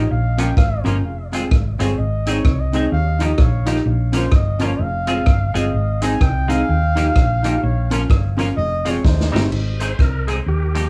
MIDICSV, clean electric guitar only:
0, 0, Header, 1, 2, 480
1, 0, Start_track
1, 0, Key_signature, -4, "major"
1, 0, Tempo, 470588
1, 109, Time_signature, 4, 2, 24, 8
1, 11113, End_track
2, 0, Start_track
2, 0, Title_t, "Clean electric guitar"
2, 0, Program_c, 0, 27
2, 394, Note_on_c, 0, 53, 87
2, 395, Note_on_c, 0, 58, 88
2, 399, Note_on_c, 0, 61, 84
2, 406, Note_on_c, 0, 65, 89
2, 494, Note_off_c, 0, 53, 0
2, 495, Note_off_c, 0, 58, 0
2, 497, Note_off_c, 0, 61, 0
2, 500, Note_off_c, 0, 65, 0
2, 867, Note_on_c, 0, 53, 83
2, 879, Note_on_c, 0, 58, 86
2, 887, Note_on_c, 0, 61, 90
2, 891, Note_on_c, 0, 65, 89
2, 970, Note_off_c, 0, 53, 0
2, 976, Note_off_c, 0, 58, 0
2, 980, Note_off_c, 0, 61, 0
2, 982, Note_off_c, 0, 65, 0
2, 1357, Note_on_c, 0, 56, 85
2, 1370, Note_on_c, 0, 60, 93
2, 1372, Note_on_c, 0, 65, 98
2, 1379, Note_on_c, 0, 68, 88
2, 1454, Note_off_c, 0, 56, 0
2, 1461, Note_off_c, 0, 60, 0
2, 1462, Note_off_c, 0, 65, 0
2, 1466, Note_off_c, 0, 68, 0
2, 1833, Note_on_c, 0, 56, 99
2, 1839, Note_on_c, 0, 60, 96
2, 1842, Note_on_c, 0, 65, 102
2, 1850, Note_on_c, 0, 68, 99
2, 1932, Note_off_c, 0, 56, 0
2, 1935, Note_off_c, 0, 60, 0
2, 1936, Note_off_c, 0, 65, 0
2, 1940, Note_off_c, 0, 68, 0
2, 2318, Note_on_c, 0, 56, 82
2, 2321, Note_on_c, 0, 60, 91
2, 2325, Note_on_c, 0, 63, 96
2, 2333, Note_on_c, 0, 68, 99
2, 2414, Note_off_c, 0, 56, 0
2, 2415, Note_off_c, 0, 60, 0
2, 2418, Note_off_c, 0, 63, 0
2, 2421, Note_off_c, 0, 68, 0
2, 2797, Note_on_c, 0, 56, 72
2, 2804, Note_on_c, 0, 60, 80
2, 2812, Note_on_c, 0, 63, 87
2, 2813, Note_on_c, 0, 68, 84
2, 2893, Note_off_c, 0, 56, 0
2, 2897, Note_off_c, 0, 60, 0
2, 2900, Note_off_c, 0, 63, 0
2, 2901, Note_off_c, 0, 68, 0
2, 3272, Note_on_c, 0, 53, 87
2, 3279, Note_on_c, 0, 58, 86
2, 3283, Note_on_c, 0, 63, 91
2, 3285, Note_on_c, 0, 67, 93
2, 3370, Note_off_c, 0, 53, 0
2, 3374, Note_off_c, 0, 58, 0
2, 3376, Note_off_c, 0, 63, 0
2, 3377, Note_off_c, 0, 67, 0
2, 3741, Note_on_c, 0, 53, 83
2, 3748, Note_on_c, 0, 58, 89
2, 3752, Note_on_c, 0, 63, 85
2, 3754, Note_on_c, 0, 67, 95
2, 3845, Note_off_c, 0, 53, 0
2, 3848, Note_off_c, 0, 58, 0
2, 3850, Note_off_c, 0, 63, 0
2, 3851, Note_off_c, 0, 67, 0
2, 4218, Note_on_c, 0, 53, 88
2, 4226, Note_on_c, 0, 58, 91
2, 4230, Note_on_c, 0, 61, 88
2, 4239, Note_on_c, 0, 65, 90
2, 4323, Note_off_c, 0, 53, 0
2, 4327, Note_off_c, 0, 58, 0
2, 4329, Note_off_c, 0, 61, 0
2, 4333, Note_off_c, 0, 65, 0
2, 4697, Note_on_c, 0, 53, 78
2, 4707, Note_on_c, 0, 58, 92
2, 4711, Note_on_c, 0, 61, 78
2, 4711, Note_on_c, 0, 65, 91
2, 4803, Note_off_c, 0, 53, 0
2, 4808, Note_off_c, 0, 58, 0
2, 4809, Note_off_c, 0, 61, 0
2, 4810, Note_off_c, 0, 65, 0
2, 5176, Note_on_c, 0, 56, 83
2, 5179, Note_on_c, 0, 60, 88
2, 5184, Note_on_c, 0, 65, 97
2, 5189, Note_on_c, 0, 68, 102
2, 5282, Note_off_c, 0, 56, 0
2, 5284, Note_off_c, 0, 60, 0
2, 5286, Note_off_c, 0, 65, 0
2, 5289, Note_off_c, 0, 68, 0
2, 5655, Note_on_c, 0, 56, 87
2, 5665, Note_on_c, 0, 60, 90
2, 5665, Note_on_c, 0, 65, 90
2, 5666, Note_on_c, 0, 68, 102
2, 5761, Note_off_c, 0, 56, 0
2, 5766, Note_off_c, 0, 60, 0
2, 5767, Note_off_c, 0, 65, 0
2, 5767, Note_off_c, 0, 68, 0
2, 6144, Note_on_c, 0, 56, 82
2, 6156, Note_on_c, 0, 63, 94
2, 6158, Note_on_c, 0, 60, 89
2, 6160, Note_on_c, 0, 68, 91
2, 6246, Note_off_c, 0, 56, 0
2, 6252, Note_off_c, 0, 63, 0
2, 6253, Note_off_c, 0, 60, 0
2, 6254, Note_off_c, 0, 68, 0
2, 6612, Note_on_c, 0, 56, 102
2, 6623, Note_on_c, 0, 63, 97
2, 6625, Note_on_c, 0, 60, 85
2, 6633, Note_on_c, 0, 68, 95
2, 6720, Note_off_c, 0, 56, 0
2, 6726, Note_off_c, 0, 63, 0
2, 6727, Note_off_c, 0, 60, 0
2, 6730, Note_off_c, 0, 68, 0
2, 7104, Note_on_c, 0, 53, 84
2, 7111, Note_on_c, 0, 58, 87
2, 7117, Note_on_c, 0, 63, 92
2, 7120, Note_on_c, 0, 67, 100
2, 7206, Note_off_c, 0, 53, 0
2, 7210, Note_off_c, 0, 58, 0
2, 7213, Note_off_c, 0, 63, 0
2, 7214, Note_off_c, 0, 67, 0
2, 7597, Note_on_c, 0, 58, 89
2, 7598, Note_on_c, 0, 53, 88
2, 7606, Note_on_c, 0, 63, 87
2, 7611, Note_on_c, 0, 67, 87
2, 7693, Note_off_c, 0, 58, 0
2, 7694, Note_off_c, 0, 53, 0
2, 7698, Note_off_c, 0, 63, 0
2, 7700, Note_off_c, 0, 67, 0
2, 8072, Note_on_c, 0, 53, 86
2, 8081, Note_on_c, 0, 58, 97
2, 8086, Note_on_c, 0, 61, 100
2, 8094, Note_on_c, 0, 65, 95
2, 8171, Note_off_c, 0, 53, 0
2, 8176, Note_off_c, 0, 58, 0
2, 8178, Note_off_c, 0, 61, 0
2, 8182, Note_off_c, 0, 65, 0
2, 8548, Note_on_c, 0, 53, 91
2, 8560, Note_on_c, 0, 58, 87
2, 8560, Note_on_c, 0, 61, 83
2, 8566, Note_on_c, 0, 65, 102
2, 8650, Note_off_c, 0, 53, 0
2, 8656, Note_off_c, 0, 58, 0
2, 8656, Note_off_c, 0, 61, 0
2, 8659, Note_off_c, 0, 65, 0
2, 9031, Note_on_c, 0, 53, 89
2, 9039, Note_on_c, 0, 56, 81
2, 9046, Note_on_c, 0, 60, 95
2, 9049, Note_on_c, 0, 65, 90
2, 9132, Note_off_c, 0, 53, 0
2, 9136, Note_off_c, 0, 56, 0
2, 9139, Note_off_c, 0, 60, 0
2, 9141, Note_off_c, 0, 65, 0
2, 9506, Note_on_c, 0, 55, 88
2, 9512, Note_on_c, 0, 60, 90
2, 9520, Note_on_c, 0, 63, 93
2, 9526, Note_on_c, 0, 67, 93
2, 9610, Note_off_c, 0, 55, 0
2, 9613, Note_off_c, 0, 60, 0
2, 9617, Note_off_c, 0, 63, 0
2, 9620, Note_off_c, 0, 67, 0
2, 10009, Note_on_c, 0, 56, 74
2, 10012, Note_on_c, 0, 60, 74
2, 10014, Note_on_c, 0, 63, 80
2, 10019, Note_on_c, 0, 68, 93
2, 10102, Note_off_c, 0, 56, 0
2, 10104, Note_off_c, 0, 60, 0
2, 10105, Note_off_c, 0, 63, 0
2, 10107, Note_off_c, 0, 68, 0
2, 10485, Note_on_c, 0, 56, 82
2, 10492, Note_on_c, 0, 60, 86
2, 10494, Note_on_c, 0, 63, 82
2, 10503, Note_on_c, 0, 68, 86
2, 10581, Note_off_c, 0, 56, 0
2, 10585, Note_off_c, 0, 60, 0
2, 10586, Note_off_c, 0, 63, 0
2, 10590, Note_off_c, 0, 68, 0
2, 10962, Note_on_c, 0, 53, 83
2, 10966, Note_on_c, 0, 58, 92
2, 10975, Note_on_c, 0, 63, 97
2, 10980, Note_on_c, 0, 67, 93
2, 11061, Note_off_c, 0, 53, 0
2, 11062, Note_off_c, 0, 58, 0
2, 11067, Note_off_c, 0, 63, 0
2, 11070, Note_off_c, 0, 67, 0
2, 11113, End_track
0, 0, End_of_file